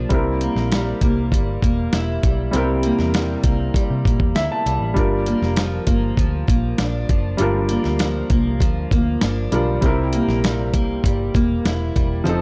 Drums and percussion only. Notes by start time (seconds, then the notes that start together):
0.10 kick, closed hi-hat
0.41 closed hi-hat
0.56 snare
0.72 snare, closed hi-hat
1.01 kick, closed hi-hat
1.32 kick, closed hi-hat
1.62 kick, closed hi-hat
1.93 snare, closed hi-hat
2.23 kick, closed hi-hat
2.53 closed hi-hat
2.83 closed hi-hat
2.99 snare
3.14 snare, closed hi-hat
3.44 kick, closed hi-hat
3.74 kick, closed hi-hat
4.05 kick, closed hi-hat
4.20 kick
4.36 snare, closed hi-hat
4.67 closed hi-hat
4.97 kick, closed hi-hat
5.26 closed hi-hat
5.43 snare
5.56 snare, closed hi-hat
5.87 kick, closed hi-hat
6.17 kick, closed hi-hat
6.48 kick, closed hi-hat
6.78 snare, closed hi-hat
7.09 kick, closed hi-hat
7.38 closed hi-hat
7.69 closed hi-hat
7.84 snare
7.99 snare, closed hi-hat
8.30 kick, closed hi-hat
8.60 kick, closed hi-hat
8.91 kick, closed hi-hat
9.21 snare, closed hi-hat
9.52 closed hi-hat
9.82 kick, closed hi-hat
10.13 closed hi-hat
10.29 snare
10.44 snare, closed hi-hat
10.74 kick, closed hi-hat
11.04 kick, closed hi-hat
11.35 kick, closed hi-hat
11.66 snare, closed hi-hat
11.96 kick, closed hi-hat
12.27 closed hi-hat